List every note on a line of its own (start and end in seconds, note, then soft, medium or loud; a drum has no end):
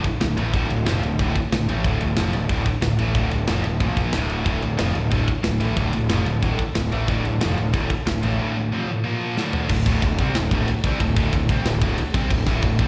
0.04 kick medium
0.04 ride medium
0.21 0.37 D1 medium
0.21 0.34 D2 medium
0.21 0.34 A2 medium
0.21 snare loud
0.21 ride medium
0.37 0.53 A1 medium
0.37 0.53 A2 medium
0.37 0.53 E3 medium
0.37 0.53 A3 loud
0.37 ride medium
0.53 0.69 D1 medium
0.53 0.69 D2 loud
0.53 0.69 A2 medium
0.53 0.70 D3 loud
0.53 kick medium
0.53 ride medium
0.70 0.86 D1 medium
0.70 0.83 D2 medium
0.70 0.83 A2 medium
0.70 ride medium
0.86 1.02 F1 loud
0.86 1.02 F2 loud
0.86 1.02 C3 loud
0.86 1.03 F3 loud
0.86 snare loud
0.86 ride medium
1.03 1.18 D1 medium
1.03 1.16 D2 medium
1.03 1.16 A2 medium
1.03 ride medium
1.19 1.34 D1 medium
1.19 1.36 D2 medium
1.19 1.36 A2 medium
1.19 1.36 D3 medium
1.19 kick loud
1.19 ride medium
1.36 kick medium
1.36 ride medium
1.52 1.68 D1 medium
1.52 1.65 D2 medium
1.52 1.66 A2 medium
1.52 snare loud
1.52 ride medium
1.69 1.84 A1 medium
1.69 1.84 A2 medium
1.69 1.84 E3 loud
1.69 1.85 A3 loud
1.69 ride medium
1.84 2.00 D1 medium
1.84 2.01 D2 medium
1.84 2.01 A2 loud
1.84 2.01 D3 loud
1.84 kick loud
1.84 ride medium
2.01 2.16 D1 medium
2.01 2.15 D2 medium
2.01 2.15 A2 medium
2.01 ride medium
2.16 2.32 F1 medium
2.16 2.33 F2 medium
2.16 2.34 C3 medium
2.16 2.34 F3 loud
2.16 snare loud
2.16 ride medium
2.33 2.48 D1 medium
2.33 2.47 D2 medium
2.33 2.47 A2 medium
2.33 ride medium
2.49 2.65 D1 loud
2.49 2.66 D2 medium
2.49 2.66 A2 loud
2.49 2.66 D3 loud
2.49 kick loud
2.49 ride medium
2.66 kick medium
2.66 ride medium
2.82 2.98 D1 medium
2.82 2.95 D2 medium
2.82 2.96 A2 medium
2.82 snare loud
2.82 ride medium
2.99 3.14 A1 medium
2.99 3.14 A2 medium
2.99 3.15 E3 loud
2.99 3.15 A3 loud
2.99 ride medium
3.15 3.30 D1 medium
3.15 3.31 D2 medium
3.15 3.31 A2 loud
3.15 3.32 D3 medium
3.15 kick loud
3.15 ride medium
3.31 3.48 D1 medium
3.31 3.45 D2 medium
3.31 3.45 A2 medium
3.31 ride medium
3.47 3.64 F1 medium
3.47 3.64 F2 medium
3.47 3.64 C3 medium
3.47 3.65 F3 medium
3.47 snare loud
3.47 ride loud
3.64 3.80 D1 medium
3.64 3.78 D2 medium
3.64 3.78 A2 medium
3.64 ride medium
3.80 4.11 A#1 medium
3.80 4.13 A#2 medium
3.80 4.13 F3 medium
3.80 4.14 A#3 loud
3.80 kick loud
3.80 ride medium
3.97 kick medium
3.97 ride medium
4.13 4.44 D1 medium
4.13 4.44 D2 medium
4.13 4.44 A2 medium
4.13 4.45 D3 medium
4.13 snare loud
4.13 ride medium
4.30 ride medium
4.45 4.62 D1 medium
4.45 4.61 D2 medium
4.45 4.61 A2 medium
4.45 4.62 D3 medium
4.45 kick loud
4.45 ride medium
4.62 4.78 D1 medium
4.62 4.75 D2 medium
4.62 4.76 A2 medium
4.62 ride medium
4.77 4.94 F1 medium
4.77 4.94 F2 medium
4.77 4.94 C3 loud
4.77 4.95 F3 loud
4.77 snare loud
4.77 ride medium
4.94 5.11 D1 medium
4.94 5.08 D2 medium
4.94 5.08 A2 medium
4.94 ride medium
5.11 5.27 D1 medium
5.11 5.27 D2 medium
5.11 5.28 A2 medium
5.11 5.28 D3 loud
5.11 kick loud
5.11 ride medium
5.28 kick medium
5.28 ride medium
5.43 5.60 D1 medium
5.43 5.57 D2 medium
5.43 5.57 A2 medium
5.43 snare loud
5.43 ride medium
5.60 5.76 A1 medium
5.60 5.75 A2 medium
5.60 5.76 E3 loud
5.60 5.77 A3 loud
5.60 ride medium
5.76 5.93 D1 medium
5.76 5.92 D2 loud
5.76 5.92 A2 medium
5.76 5.93 D3 loud
5.76 kick loud
5.76 ride medium
5.93 6.09 D1 medium
5.93 6.07 D2 medium
5.93 6.07 A2 medium
5.93 ride medium
6.09 6.25 F1 loud
6.09 6.26 F2 medium
6.09 6.26 C3 medium
6.09 6.26 F3 loud
6.09 snare loud
6.09 ride loud
6.26 6.41 D1 medium
6.26 6.39 D2 medium
6.26 6.40 A2 medium
6.26 ride medium
6.42 6.58 D1 medium
6.42 6.59 D2 medium
6.42 6.59 A2 medium
6.42 6.59 D3 loud
6.42 kick loud
6.42 ride medium
6.59 kick medium
6.59 ride medium
6.75 6.91 D1 medium
6.75 6.89 D2 medium
6.75 6.89 A2 medium
6.75 snare loud
6.75 ride medium
6.92 7.07 A1 medium
6.92 7.07 A2 loud
6.92 7.08 E3 medium
6.92 7.08 A3 loud
6.92 ride medium
7.08 7.24 D1 medium
7.08 7.24 D2 loud
7.08 7.24 A2 medium
7.08 7.25 D3 loud
7.08 kick loud
7.08 ride medium
7.25 7.40 D1 medium
7.25 7.38 D2 medium
7.25 7.38 A2 medium
7.25 ride medium
7.41 7.57 F1 loud
7.41 7.56 F2 medium
7.41 7.57 C3 loud
7.41 7.57 F3 loud
7.41 snare loud
7.41 ride medium
7.57 7.73 D1 medium
7.57 7.70 D2 medium
7.57 7.71 A2 medium
7.57 ride medium
7.73 7.89 D1 loud
7.73 7.89 D2 medium
7.73 7.90 A2 medium
7.73 7.90 D3 medium
7.73 kick loud
7.73 ride medium
7.90 kick medium
7.90 ride medium
8.07 8.22 D1 medium
8.07 8.20 D2 medium
8.07 8.20 A2 medium
8.07 snare loud
8.07 ride medium
8.23 8.39 A1 loud
8.23 8.38 A2 medium
8.23 8.39 E3 medium
8.23 8.39 A3 medium
8.23 ride medium
8.38 8.55 D2 loud
8.38 8.55 A2 loud
8.38 8.55 D3 loud
8.56 8.69 D2 medium
8.56 8.69 A2 medium
8.72 8.88 F2 medium
8.72 8.88 C3 loud
8.72 8.89 F3 loud
8.88 9.01 D2 medium
8.88 9.02 A2 medium
9.04 9.36 A#2 loud
9.04 9.37 F3 loud
9.04 9.37 A#3 medium
9.37 9.69 D2 medium
9.37 9.69 A2 medium
9.37 9.70 D3 medium
9.37 snare medium
9.53 floor tom medium
9.69 9.85 D1 medium
9.69 9.83 D2 medium
9.69 9.83 A2 medium
9.69 kick medium
9.69 crash loud
9.86 10.01 D1 medium
9.86 10.03 D2 medium
9.86 10.03 A2 loud
9.86 10.03 D3 loud
9.86 kick loud
9.86 ride medium
10.02 10.18 D1 medium
10.02 10.16 D2 medium
10.02 10.17 A2 medium
10.02 kick loud
10.02 ride loud
10.19 10.34 C2 loud
10.19 10.35 C3 medium
10.19 10.36 G3 medium
10.19 10.36 C4 loud
10.19 kick loud
10.19 ride medium
10.35 10.50 D1 medium
10.35 10.49 D2 medium
10.35 10.49 A2 medium
10.35 snare loud
10.35 ride medium
10.51 10.66 D1 medium
10.51 10.68 D2 medium
10.51 10.68 A2 medium
10.51 10.68 D3 loud
10.51 kick loud
10.51 ride medium
10.68 ride loud
10.84 10.99 C2 medium
10.84 11.00 C3 medium
10.84 11.01 G3 loud
10.84 11.01 C4 loud
10.84 kick loud
10.84 ride medium
11.00 11.15 D1 medium
11.00 11.14 D2 medium
11.00 11.14 A2 medium
11.00 kick medium
11.00 ride loud
11.16 11.32 D1 loud
11.16 11.33 D2 medium
11.16 11.33 A2 loud
11.16 11.33 D3 loud
11.16 kick loud
11.16 ride medium
11.33 11.48 D1 medium
11.33 11.47 D2 medium
11.33 11.47 A2 medium
11.33 kick loud
11.33 ride loud
11.49 11.65 C2 loud
11.49 11.65 C3 medium
11.49 11.65 G3 loud
11.49 11.66 C4 loud
11.49 kick loud
11.49 ride medium
11.65 11.81 D1 medium
11.65 11.79 D2 medium
11.65 11.79 A2 medium
11.65 snare loud
11.65 ride loud
11.82 11.97 D1 medium
11.82 11.98 D2 medium
11.82 11.98 A2 loud
11.82 11.98 D3 medium
11.82 kick loud
11.82 ride medium
11.98 ride loud
12.14 12.29 C2 medium
12.14 12.30 C3 loud
12.14 12.30 G3 medium
12.14 12.31 C4 loud
12.14 kick loud
12.14 ride medium
12.30 12.46 D1 medium
12.30 12.44 D2 medium
12.30 12.44 A2 medium
12.30 kick medium
12.30 crash loud
12.47 12.62 D1 loud
12.47 12.63 D2 medium
12.47 12.63 A2 loud
12.47 12.63 D3 loud
12.47 kick loud
12.47 snare soft
12.47 ride medium
12.62 12.78 D1 medium
12.62 12.77 D2 medium
12.62 12.77 A2 medium
12.62 kick medium
12.62 ride loud
12.79 12.88 C2 loud
12.79 12.88 C3 medium
12.79 12.88 G3 medium
12.79 12.88 C4 loud
12.79 kick loud
12.79 ride medium